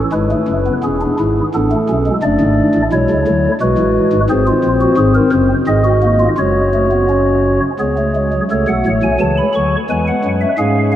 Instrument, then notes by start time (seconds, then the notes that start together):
pipe organ
Already playing: C#4
0.13 G#1 G#2 G#3 E4 B4
0.31 A3
0.48 F#1 F#2
0.66 B3
0.84 E1 E2 C#4 G#4
1.02 D4
1.20 G#1 G#2 E4
1.55 A1 A2 B3 D4 A4
1.71 A3
1.89 B1 B2 C#4
2.06 G#3
2.23 F#1 F#2 A3 D4 D5
2.41 G#1 G#2
2.75 A1 A2
2.92 B1 B2 G#3 E4 C#5
3.10 C#2 C#3
3.27 D2 D3 F#3
3.61 B1 B2 G#3 F#4 B4
3.78 A1 A2
4.13 G#1 G#2
4.30 G#1 G#2 C4 G#4 C5
4.47 F4
4.64 A#1 A#2
4.81 F#4
4.98 G#1 G#2 G#4
5.15 A#4
5.32 F#1 F#2 C5
5.67 G#1 G#2 C4 G#4 D#5
5.85 F#4
6.02 A#3
6.19 F4
6.38 F#1 F#2 G#3 F#4 C#5
6.74 A3
6.91 B3
7.09 C#4
7.79 C#2 C#3 B3 G#4 C#5
7.98 A3
8.15 G#3
8.33 F#3
8.51 C#2 C#3 A3 A4 C#5
8.68 B1 B2 F#5
8.86 A1 A2 C#5
9.03 B1 B2 G#5
9.20 C#2 C#3 E3 A5
9.38 B5
9.55 D2 D3 F#3 C#6
9.90 E2 E3 G#3 B4 G#5
10.07 F#5
10.25 F#2 F#3
10.41 E5
10.58 G#2 G#3 C#4 G#4 F5
10.92 F5